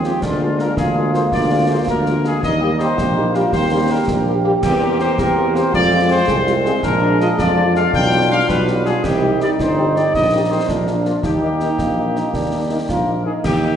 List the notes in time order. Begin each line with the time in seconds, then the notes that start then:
Already playing: F3 G#3 C4
0.04 G#3 C4 F4 G4, snare
0.21 D2 G#3 A#3 D4 F4, concert bass drum, snare, crash
0.40 G#3 A#3 F4
0.59 G#3 A#3 F4 A#4, snare
0.77 D2 F4 G#4, concert bass drum, snare
0.96 G#3 A#3 F4
1.14 G#3 A#3 F4 C5, snare
1.32 D2 D5, concert bass drum, snare
1.51 G#3 A#3 F4
1.69 G#3 A#3 F4 C5
1.87 D2 A#4, concert bass drum, snare
2.06 G#3 A#3 F4, snare
2.24 G#3 A#3 F4 G#4, snare
2.43 D#2 G3 A#3 D#4 D#5, concert bass drum, snare
2.61 G3 A#3 G4
2.79 G3 A#3 G4 C5, snare
2.97 A#1 G4, concert bass drum, snare
3.16 G3 A#3 D#4 G4
3.34 G3 A#3 F4 G4 A#4, snare
3.52 D#2 G4 C5, concert bass drum, snare
3.71 G3 A#3 G4
3.89 G3 A#3 G4 A#4
4.08 A#1, concert bass drum, snare
4.26 G3 A#3 G4
4.44 G3 A#3 G4
4.63 E2 A#3 C4 G4, concert bass drum, snare, crash
4.81 A#3 C4 G4
4.99 A#3 C4 G4 C5, snare
5.18 E2 G4 A#4, concert bass drum, snare
5.36 A#3 C4 G4
5.54 A#3 C4 G4 C5, snare
5.73 F2 G#3 F4 D5, concert bass drum, snare
5.90 G#3 C4 F4
6.09 G#3 C4 F4 C5
6.27 C2 G#4, concert bass drum, snare
6.46 G#3 C4 F4 G4, snare
6.65 G#3 C4 F4 G#4, snare
6.83 A#1 D4 A#4, concert bass drum, snare
7.01 G#3 D4 F4
7.20 G#3 D4 F4 D#5, snare
7.38 F2 F4 D5, concert bass drum, snare
7.56 G#3 D4 F4
7.75 G#3 D4 F4 F5, snare
7.93 B1 G3 D4 F4 G5, concert bass drum, snare
8.12 G3 D4 F4
8.30 G3 D4 F4 F5
8.49 B1 B4, concert bass drum, snare
8.67 G3 D4 F4, snare
8.85 G3 D4 F4 G#4, snare
9.04 C2 D#4 G4, concert bass drum, snare, crash
9.21 G3 D#4 G4
9.39 G3 D#4 G4 D5, snare
9.59 G1 C5, concert bass drum, snare
9.76 G3 D#4 G4
9.95 G3 D#4 G4 D5, snare
10.14 A#1 G3 D#5, concert bass drum, snare
10.32 A#3 D#4 G4
10.51 A#3 D#4 G4 C5
10.69 A#1 A#3 D4 A#4, concert bass drum, snare
10.87 A#3 D4 F4, snare
11.05 A#3 D4 F4, snare
11.23 D#2 A#3 D#4 G4, concert bass drum, snare
11.42 A#3 D#4
11.60 A#3 D#4, snare
11.79 A#1 A#3, concert bass drum, snare
11.97 A#3 D#4
12.15 A#3 D#4, snare
12.33 D#2 D4, concert bass drum, snare
12.53 A#3 D#4
12.71 A#3 D#4
12.88 A#1 F4 A#4, concert bass drum, snare
13.08 A#3 D#4
13.25 A#3 D#4 G#4
13.44 D#2 A#3 D#4 G4, concert bass drum, snare, crash
13.62 A#3 D#4